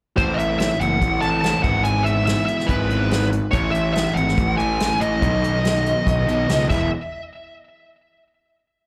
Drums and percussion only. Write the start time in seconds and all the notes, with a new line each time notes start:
0.18 kick, closed hi-hat
0.39 closed hi-hat
0.60 snare, closed hi-hat
0.81 closed hi-hat
1.01 kick, closed hi-hat
1.22 closed hi-hat
1.44 snare, closed hi-hat
1.64 kick, closed hi-hat
1.85 closed hi-hat
2.06 closed hi-hat
2.27 snare, closed hi-hat
2.48 closed hi-hat
2.60 snare
2.69 kick, closed hi-hat
2.90 closed hi-hat
3.11 snare, closed hi-hat
3.32 closed hi-hat
3.53 kick, closed hi-hat
3.75 closed hi-hat
3.95 snare, closed hi-hat
4.17 closed hi-hat
4.28 snare
4.38 kick, closed hi-hat
4.59 closed hi-hat
4.80 snare, closed hi-hat
5.01 closed hi-hat
5.22 kick, closed hi-hat
5.44 closed hi-hat
5.65 snare, closed hi-hat
5.86 closed hi-hat
6.07 kick, closed hi-hat
6.28 closed hi-hat
6.49 snare, closed hi-hat
6.70 kick, crash